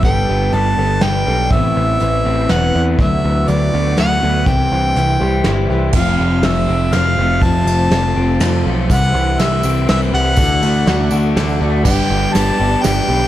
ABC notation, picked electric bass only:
X:1
M:3/4
L:1/8
Q:1/4=122
K:G
V:1 name="Picked electric bass" clef=bass
G,,, G,,, G,,, G,,, G,,, B,,, | A,,, A,,, A,,, A,,, E,,, E,, | D,, D,, D,, D,, D,, D,, | C,, C,, C,, C,, G,,, C,, |
=F,,, F,,, F,,, F,,, F,,, F,,, | =F,,, F,,, F,,, F,,, F,,, B,,, | C,, C,, C,, C,, C,, C,, | D,, D,, D,, D,, D,, D,, |
G,,, G,,, G,,, G,,, G,,, B,,, |]